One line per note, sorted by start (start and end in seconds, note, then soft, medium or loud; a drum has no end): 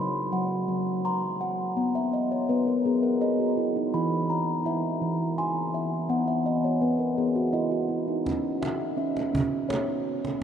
0.00 0.29 F#3 medium
0.00 0.33 F#4 medium
0.00 1.05 B5 soft
0.00 0.69 C6 medium
0.33 0.66 F#3 medium
0.33 1.05 F#5 medium
0.68 1.73 F#3 medium
1.05 1.77 A#5 medium
1.05 2.13 C6 medium
1.41 2.13 F#5 medium
1.77 2.45 B3 medium
1.95 2.29 E5 medium
2.13 2.47 D#5 medium
2.32 2.65 C#5 medium
2.49 2.82 B3 medium
2.49 2.51 B4 medium
2.67 3.01 A#4 medium
2.85 3.90 B3 medium
2.85 3.19 G#4 medium
3.03 3.37 A#4 medium
3.21 3.55 G#4 medium
3.21 3.94 D#5 medium
3.39 3.73 F#4 medium
3.57 3.91 E4 medium
3.76 4.09 D#4 medium
3.94 4.66 E3 medium
3.94 4.64 E4 medium
3.94 5.02 B5 medium
4.30 5.38 A#5 medium
4.65 4.98 E4 medium
4.65 5.38 E5 medium
5.01 6.06 E3 medium
5.38 6.10 G#5 medium
5.38 6.46 C6 medium
5.74 6.26 E5 medium
6.09 6.78 B3 medium
6.09 6.43 F#5 medium
6.28 6.61 E5 medium
6.46 6.79 D#5 medium
6.64 6.97 C#5 medium
6.81 7.14 B3 medium
6.81 6.84 B4 medium
6.99 7.33 A#4 medium
7.18 8.22 B3 medium
7.18 7.51 G#4 medium
7.36 7.69 F#4 medium
7.53 7.87 E4 medium
7.53 8.25 D#5 medium
7.71 8.05 F#4 medium
7.89 8.23 E4 medium
8.08 8.41 D#4 medium
8.25 8.96 C#4 medium
8.25 cajon bass soft
8.25 cajon slap soft
8.44 cajon slap soft
8.62 8.96 E5 medium
8.62 cajon slap soft
8.80 cajon slap soft
8.97 9.30 C#4 medium
8.97 9.70 E5 medium
9.17 cajon slap soft
9.33 10.37 C#4 medium
9.33 cajon bass soft
9.69 10.41 C#5 medium
9.69 cajon slap medium
9.88 cajon slap soft
10.25 cajon slap soft